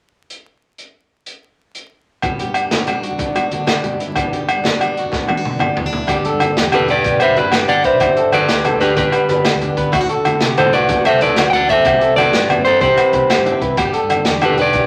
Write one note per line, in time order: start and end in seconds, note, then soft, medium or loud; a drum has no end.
0.30 closed hi-hat soft
0.78 closed hi-hat soft
1.26 closed hi-hat soft
1.75 closed hi-hat soft
2.22 2.86 G2 medium
2.22 3.19 B3 soft
2.22 kick medium
2.22 closed hi-hat medium
2.22 muted conga medium
2.22 low conga soft
2.22 low agogo medium
2.31 high conga medium
2.39 2.71 G4 soft
2.39 closed hi-hat soft
2.39 low conga medium
2.48 low conga soft
2.54 3.51 D3 medium
2.54 2.87 D4 soft
2.54 closed hi-hat soft
2.54 low conga soft
2.54 low agogo medium
2.64 low conga medium
2.71 3.03 G4 soft
2.71 snare medium
2.71 closed hi-hat medium
2.71 muted conga medium
2.71 high conga medium
2.87 3.53 D4 medium
2.87 muted steel-string acoustic guitar stroke medium
2.87 closed hi-hat soft
2.87 low conga medium
2.87 low agogo medium
3.03 3.34 F#4 soft
3.03 closed hi-hat soft
3.11 high conga medium
3.11 low conga medium
3.18 3.84 G2 medium
3.18 4.17 B3 soft
3.18 kick medium
3.18 closed hi-hat medium
3.18 muted conga medium
3.27 low conga soft
3.35 3.68 F#4 soft
3.35 closed hi-hat soft
3.35 low conga medium
3.35 low agogo medium
3.51 4.47 D3 soft
3.51 3.85 D4 medium
3.51 closed hi-hat soft
3.51 high conga medium
3.58 low conga medium
3.67 4.00 G4 medium
3.67 snare medium
3.67 closed hi-hat medium
3.67 muted conga medium
3.67 low conga soft
3.67 low agogo medium
3.82 4.16 G2 medium
3.82 4.49 D4 medium
3.82 closed hi-hat soft
3.82 low conga medium
3.91 high conga medium
4.00 4.16 E4 medium
4.00 closed hi-hat soft
4.08 low conga medium
4.16 4.80 G2 medium
4.16 5.13 B3 medium
4.16 kick medium
4.16 closed hi-hat medium
4.16 muted conga medium
4.16 low conga soft
4.16 low agogo medium
4.25 high conga medium
4.33 4.65 G4 soft
4.33 closed hi-hat soft
4.33 low conga medium
4.41 low conga soft
4.48 5.44 D3 medium
4.48 4.81 D4 medium
4.48 closed hi-hat soft
4.48 low conga soft
4.48 low agogo medium
4.56 low conga medium
4.64 4.97 G4 medium
4.64 snare medium
4.64 closed hi-hat medium
4.64 muted conga medium
4.64 high conga medium
4.80 5.12 G2 medium
4.80 5.45 D4 medium
4.80 closed hi-hat soft
4.80 low conga medium
4.80 low agogo medium
4.97 5.29 F#4 soft
4.97 closed hi-hat soft
5.04 high conga medium
5.04 low conga medium
5.12 5.76 G2 medium
5.12 5.76 B3 medium
5.12 kick medium
5.12 snare soft
5.12 muted conga medium
5.20 low conga soft
5.27 5.37 E4 soft
5.27 high tom soft
5.27 low conga medium
5.27 low agogo medium
5.37 5.61 F#4 soft
5.45 6.09 D3 soft
5.45 5.77 D4 medium
5.45 mid tom medium
5.51 low conga medium
5.59 5.93 G4 medium
5.59 mid tom soft
5.59 muted conga medium
5.59 low conga soft
5.59 low agogo medium
5.75 6.07 G2 medium
5.75 5.86 B3 medium
5.75 floor tom medium
5.75 low conga medium
5.84 6.09 D4 soft
5.84 high conga medium
5.93 6.09 E4 soft
5.93 floor tom medium
5.99 low conga medium
6.07 6.22 G1 medium
6.07 6.72 G2 medium
6.07 6.40 D3 medium
6.07 6.89 B3 medium
6.07 6.24 G4 medium
6.07 kick medium
6.07 closed hi-hat medium
6.07 muted conga medium
6.07 low agogo medium
6.12 6.25 D4 medium
6.12 6.58 G4 medium
6.12 low conga medium
6.25 6.73 D4 medium
6.25 6.56 A4 medium
6.25 closed hi-hat soft
6.32 6.52 G2 medium
6.32 low conga soft
6.40 7.37 D3 medium
6.40 closed hi-hat soft
6.40 muted conga medium
6.40 high conga medium
6.40 low agogo medium
6.56 6.69 E2 medium
6.56 6.73 G4 medium
6.56 7.05 G4 medium
6.56 snare medium
6.56 closed hi-hat medium
6.64 low conga medium
6.72 7.04 G2 medium
6.72 7.20 D4 soft
6.72 6.88 G4 medium
6.72 6.89 A4 medium
6.72 6.89 B4 medium
6.72 closed hi-hat soft
6.72 muted conga medium
6.72 high conga medium
6.72 low agogo medium
6.79 6.99 E1 medium
6.79 low conga soft
6.88 7.84 B3 medium
6.88 7.20 G4 medium
6.88 7.19 B4 medium
6.88 7.20 D5 medium
6.88 closed hi-hat soft
7.04 7.18 B1 medium
7.04 7.68 G2 medium
7.04 7.52 G4 medium
7.04 kick medium
7.04 closed hi-hat medium
7.04 muted conga medium
7.04 low conga soft
7.12 high conga medium
7.12 low conga soft
7.20 7.70 D4 medium
7.20 7.36 B4 medium
7.20 7.37 C5 medium
7.20 7.38 E5 medium
7.20 closed hi-hat soft
7.20 low agogo medium
7.28 7.42 E1 medium
7.28 low conga soft
7.36 7.67 B4 medium
7.36 7.53 B4 medium
7.36 7.68 D5 medium
7.36 closed hi-hat soft
7.36 muted conga medium
7.45 7.64 G1 medium
7.45 low conga soft
7.52 7.99 G4 medium
7.52 7.84 G4 medium
7.52 snare medium
7.52 closed hi-hat medium
7.52 high conga medium
7.52 low conga soft
7.52 low agogo medium
7.60 low conga medium
7.68 7.82 G1 medium
7.68 7.99 G2 medium
7.68 8.17 D4 medium
7.68 7.84 D5 medium
7.68 7.85 F#5 medium
7.68 closed hi-hat medium
7.68 muted conga medium
7.68 low conga soft
7.84 7.99 B3 medium
7.84 8.00 B4 medium
7.84 8.30 C5 medium
7.84 8.33 E5 medium
7.84 kick medium
7.84 closed hi-hat medium
7.92 8.00 B1 medium
7.92 high conga medium
8.00 8.20 G1 medium
8.00 8.63 G2 medium
8.00 8.16 G4 medium
8.00 kick medium
8.00 closed hi-hat medium
8.00 muted conga medium
8.00 low agogo medium
8.08 low conga medium
8.17 8.65 D4 medium
8.17 8.48 A4 medium
8.17 closed hi-hat soft
8.25 8.44 G1 medium
8.25 low conga soft
8.32 9.27 D3 medium
8.32 8.78 B4 medium
8.32 8.83 D5 medium
8.32 closed hi-hat medium
8.32 muted conga medium
8.32 high conga medium
8.32 low agogo medium
8.48 8.62 D2 medium
8.48 8.64 G4 medium
8.48 8.96 G4 medium
8.48 snare medium
8.48 closed hi-hat medium
8.57 low conga medium
8.64 8.96 G2 medium
8.64 9.12 D4 medium
8.64 8.81 A4 medium
8.64 closed hi-hat soft
8.64 muted conga medium
8.64 high conga medium
8.64 low agogo medium
8.73 8.92 D2 medium
8.73 low conga soft
8.80 9.76 B3 soft
8.80 8.96 G4 medium
8.80 9.12 G4 medium
8.80 8.96 B4 medium
8.80 snare soft
8.80 closed hi-hat soft
8.96 9.10 G1 medium
8.96 9.59 G2 medium
8.96 9.74 G4 medium
8.96 9.44 G4 medium
8.96 9.73 B4 medium
8.96 kick medium
8.96 closed hi-hat medium
8.96 muted conga medium
8.96 low conga soft
9.05 high conga medium
9.05 low conga medium
9.12 9.28 B4 medium
9.12 muted steel-string acoustic guitar stroke medium
9.12 closed hi-hat soft
9.12 low conga soft
9.12 low agogo medium
9.21 low conga soft
9.29 9.42 G1 medium
9.29 9.91 D3 medium
9.29 9.45 B4 medium
9.29 closed hi-hat soft
9.29 muted conga medium
9.38 low conga soft
9.45 9.91 G4 medium
9.45 snare medium
9.45 closed hi-hat medium
9.45 high conga medium
9.45 low conga soft
9.45 low agogo medium
9.53 9.67 D2 medium
9.53 low conga medium
9.60 9.91 G2 medium
9.60 9.91 D4 soft
9.60 closed hi-hat soft
9.60 muted conga medium
9.60 low conga soft
9.77 9.90 G1 medium
9.77 9.91 B3 medium
9.77 9.93 B4 medium
9.77 kick medium
9.77 closed hi-hat soft
9.86 high conga medium
9.92 10.06 D2 medium
9.92 10.89 D3 medium
9.92 10.01 E4 medium
9.92 10.09 F#4 medium
9.92 kick medium
9.92 closed hi-hat medium
9.92 muted conga medium
9.92 low agogo medium
10.01 10.08 F#4 medium
10.01 low conga medium
10.09 10.41 F#4 medium
10.09 10.40 A4 medium
10.09 closed hi-hat soft
10.17 10.37 D3 medium
10.17 low conga soft
10.25 11.22 A3 medium
10.25 closed hi-hat medium
10.25 muted conga medium
10.25 high conga medium
10.25 low agogo medium
10.40 10.54 C3 medium
10.40 10.57 F#4 medium
10.40 10.57 G4 medium
10.40 snare medium
10.40 closed hi-hat medium
10.50 low conga medium
10.57 10.90 A2 medium
10.57 10.90 F#4 medium
10.57 10.73 A4 medium
10.57 10.74 C5 medium
10.57 closed hi-hat soft
10.57 muted conga medium
10.57 high conga medium
10.57 low agogo medium
10.66 10.85 C2 medium
10.66 low conga soft
10.73 11.84 D4 soft
10.73 11.04 F#4 medium
10.73 11.04 B4 medium
10.73 11.06 D5 medium
10.73 closed hi-hat soft
10.89 11.03 F#2 medium
10.89 11.38 D3 medium
10.89 11.06 F#4 medium
10.89 kick medium
10.89 closed hi-hat medium
10.89 muted conga loud
10.89 low conga soft
10.98 high conga medium
10.98 low conga medium
11.05 11.21 A4 medium
11.05 11.22 C5 medium
11.05 11.22 E5 medium
11.05 closed hi-hat medium
11.05 low agogo medium
11.13 11.26 C2 medium
11.13 low conga soft
11.21 11.37 A4 medium
11.21 11.49 B4 medium
11.21 11.48 D5 medium
11.21 closed hi-hat medium
11.21 muted conga loud
11.28 11.48 D2 medium
11.28 low conga soft
11.37 11.54 F#3 medium
11.37 11.69 F#4 medium
11.37 snare medium
11.37 closed hi-hat medium
11.37 high conga medium
11.37 low conga soft
11.37 low agogo medium
11.46 low conga medium
11.50 11.66 D2 medium
11.50 11.68 F#5 loud
11.50 11.53 G5 medium
11.50 closed hi-hat soft
11.50 muted conga medium
11.50 low conga soft
11.54 11.70 E3 medium
11.54 11.69 D5 medium
11.69 11.86 D3 medium
11.69 11.85 A4 medium
11.69 12.16 C5 medium
11.69 12.15 E5 medium
11.69 kick medium
11.69 closed hi-hat soft
11.77 11.84 F#2 medium
11.77 high conga medium
11.85 12.05 C2 medium
11.85 12.18 C3 medium
11.85 12.33 E4 medium
11.85 12.01 G4 medium
11.85 kick medium
11.85 closed hi-hat medium
11.85 muted conga loud
11.85 low agogo medium
11.93 low conga medium
12.01 12.49 C4 soft
12.01 12.32 A4 medium
12.01 closed hi-hat soft
12.10 12.29 C2 medium
12.16 13.12 E3 medium
12.16 12.63 B4 medium
12.16 12.62 D5 medium
12.16 closed hi-hat medium
12.16 muted conga medium
12.16 high conga medium
12.16 low agogo medium
12.33 12.47 G2 medium
12.33 12.81 E4 medium
12.33 12.49 G4 medium
12.33 snare medium
12.33 closed hi-hat medium
12.41 low conga medium
12.49 12.82 G2 medium
12.49 12.97 C4 soft
12.49 closed hi-hat soft
12.49 muted conga medium
12.49 high conga medium
12.49 low conga soft
12.49 low agogo medium
12.58 12.77 G2 medium
12.65 12.81 A4 medium
12.65 12.80 C5 medium
12.65 muted clean electric guitar stroke medium
12.65 muted steel-string acoustic guitar stroke soft
12.65 closed hi-hat soft
12.73 low conga soft
12.81 12.95 C2 medium
12.81 13.14 C3 medium
12.81 13.29 E4 medium
12.81 13.59 G4 medium
12.81 13.58 C5 medium
12.81 kick medium
12.81 closed hi-hat medium
12.81 muted conga medium
12.89 high conga medium
12.89 low conga medium
12.97 13.45 C4 medium
12.97 13.12 B4 medium
12.97 closed hi-hat soft
12.97 low agogo medium
13.13 13.26 C2 medium
13.13 13.76 E3 medium
13.13 13.29 B4 medium
13.13 kick medium
13.13 closed hi-hat medium
13.13 muted conga medium
13.29 13.78 E4 medium
13.29 13.60 G4 medium
13.29 snare medium
13.29 closed hi-hat medium
13.29 high conga medium
13.29 low agogo medium
13.38 13.51 G2 medium
13.38 low conga medium
13.46 13.76 G2 medium
13.46 13.76 C4 medium
13.46 closed hi-hat soft
13.46 muted conga medium
13.46 low conga soft
13.61 13.75 C2 medium
13.61 13.77 B4 medium
13.61 muted steel-string acoustic guitar stroke medium
13.61 kick medium
13.61 closed hi-hat medium
13.69 high conga medium
13.77 13.91 G1 loud
13.77 14.43 G2 medium
13.77 14.60 B3 medium
13.77 13.95 D4 soft
13.77 13.93 G4 medium
13.77 14.27 G4 medium
13.77 muted steel-string acoustic guitar stroke medium
13.77 kick medium
13.77 closed hi-hat medium
13.77 muted conga medium
13.77 low agogo medium
13.85 low conga medium
13.93 14.44 D4 medium
13.93 14.24 A4 medium
13.93 closed hi-hat soft
14.02 14.22 G2 medium
14.02 low conga soft
14.10 14.87 D3 medium
14.10 closed hi-hat medium
14.10 muted conga medium
14.10 high conga medium
14.10 low agogo medium
14.25 14.39 E2 loud
14.25 14.41 G4 medium
14.25 14.76 G4 medium
14.25 snare medium
14.25 closed hi-hat medium
14.33 low conga medium
14.41 14.75 G2 medium
14.41 14.58 G4 medium
14.41 14.57 A4 medium
14.41 14.58 B4 medium
14.41 closed hi-hat soft
14.41 muted conga medium
14.41 high conga medium
14.41 low agogo medium
14.50 14.70 E1 medium
14.50 low conga soft
14.58 14.87 B3 soft
14.58 14.87 G4 medium
14.58 14.87 B4 medium
14.58 14.87 D5 medium
14.58 closed hi-hat soft
14.73 14.87 B1 medium
14.73 14.87 G2 medium
14.73 14.87 G4 medium
14.73 kick medium
14.73 closed hi-hat medium
14.73 muted conga medium
14.73 low conga soft
14.82 high conga medium
14.82 low conga medium